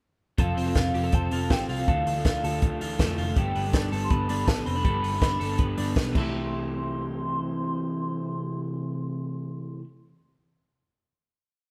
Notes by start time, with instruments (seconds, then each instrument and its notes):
0.38 picked electric bass F1, overdriven electric guitar F3 C4 F4 A4, soft synth lead F5, kick, closed hi-hat
0.57 picked electric bass F1, clean electric guitar C4, open hi-hat
0.66 overdriven electric guitar C4 F4 A4
0.75 picked electric bass F1, clean electric guitar F4, kick, snare, closed hi-hat
0.94 picked electric bass F1, overdriven electric guitar F3 C4 F4 A4, clean electric guitar G4, open hi-hat
1.04 clean electric guitar A4
1.12 picked electric bass F1, clean electric guitar C4, soft synth lead A5, kick, closed hi-hat
1.31 picked electric bass F1, overdriven electric guitar F3 C4 F4 A4, open hi-hat
1.50 overdriven electric guitar F3 C4 F4 A4, soft synth lead G5, kick, snare
1.69 picked electric bass C2, clean electric guitar F4, soft synth lead F5, open hi-hat
1.78 overdriven electric guitar C4 F4 A4
1.88 picked electric bass D2, overdriven electric guitar D3 E3 A3 F4 A4, kick, closed hi-hat
2.06 picked electric bass D2, clean electric guitar A3, open hi-hat
2.16 overdriven electric guitar A3 F4 A4
2.25 picked electric bass D2, clean electric guitar F4, kick, snare, closed hi-hat
2.44 picked electric bass D2, overdriven electric guitar A3 F4 A4, open hi-hat
2.62 picked electric bass D2, kick, closed hi-hat
2.81 picked electric bass D2, overdriven electric guitar E3 A3 F4 A4, open hi-hat
2.99 picked electric bass F2, overdriven electric guitar E3 A3 F4 A4, kick, snare, closed hi-hat
3.18 picked electric bass F1, clean electric guitar F4, open hi-hat
3.27 overdriven electric guitar A3 F4 A4
3.36 picked electric bass G1, overdriven electric guitar G3 B3 D4 A4, soft synth lead G5, kick, closed hi-hat
3.55 picked electric bass G1, clean electric guitar B3, open hi-hat
3.64 overdriven electric guitar B3 D4 A4
3.73 clean electric guitar D4, kick, snare, closed hi-hat
3.91 picked electric bass G1, overdriven electric guitar G3 B3 D4 A4, open hi-hat
4.04 soft synth lead C6
4.10 picked electric bass G1, clean electric guitar B3, soft synth lead B5, kick, closed hi-hat
4.29 picked electric bass G1, overdriven electric guitar G3 B3 D4 A4, open hi-hat
4.47 picked electric bass A1, overdriven electric guitar G3 B3 D4 A4, soft synth lead A5, kick, snare, closed hi-hat
4.66 picked electric bass F1, clean electric guitar C4, soft synth lead B5, open hi-hat
4.75 overdriven electric guitar B3 D4 A4
4.85 picked electric bass G1, overdriven electric guitar G3 B3 D4 A4, kick, closed hi-hat
5.03 picked electric bass G1, clean electric guitar B3, open hi-hat
5.12 overdriven electric guitar B3 D4 A4
5.21 picked electric bass G1, clean electric guitar C4, kick, snare, closed hi-hat
5.31 clean electric guitar D4
5.40 picked electric bass G1, overdriven electric guitar G3 B3 D4 A4, open hi-hat
5.58 picked electric bass G1, clean electric guitar B3, kick, closed hi-hat
5.77 picked electric bass G1, overdriven electric guitar G3 B3 D4 A4, open hi-hat
5.96 picked electric bass B1, overdriven electric guitar G3 B3 D4 A4, kick, snare, closed hi-hat
6.13 picked electric bass C2, overdriven electric guitar C3 E3, soft synth lead C6, kick, crash
6.18 overdriven electric guitar A3 E4 G4